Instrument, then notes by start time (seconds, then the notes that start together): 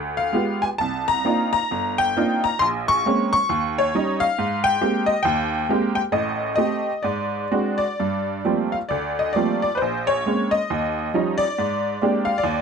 honky-tonk piano
Already playing: D2
0.17 F5
0.33 G#3 B3 F4 G4
0.62 G#5
0.78 C2 A5
1.08 A#5
1.25 A#3 C4 D4 D#4 F4
1.53 A#5
1.71 G1
1.98 G5
2.17 A#3 C4 D4 D#4 F4
2.44 A#5
2.59 A#1 C6
2.88 C#6
3.06 G#3 A#3 C4 C#4
3.33 C#6
3.49 D#2
3.78 C#5
3.95 G3 C#4 D#4
4.20 F5
4.38 G#2
4.64 G5
4.81 G#3 A#3 C4 G4
5.06 D#5
5.23 D#2 G5
5.69 G#3 A#3 C4 G4
5.95 G5
6.12 A1 A2 D#5
6.56 A3 C4 G4 D#5
7.03 G#2 D5
7.51 G#3 C4 D4 F#4
7.78 D5
8.00 G2
8.45 F3 G3 A3 A#3 C4
8.72 F5
8.89 D2 D5
9.19 D#5
9.33 F3 G3 A3 A#3 C4 D5
9.62 D5
9.75 B4 C5
9.82 A#1
10.07 C#5
10.26 G#3 A#3 C4 C#4
10.51 D#5
10.70 D#2
11.14 F3 G3 C#4 D#4
11.38 D5
11.58 G#2
12.02 G#3 A#3 C4 D4 G4
12.25 F5
12.38 D5
12.43 D#2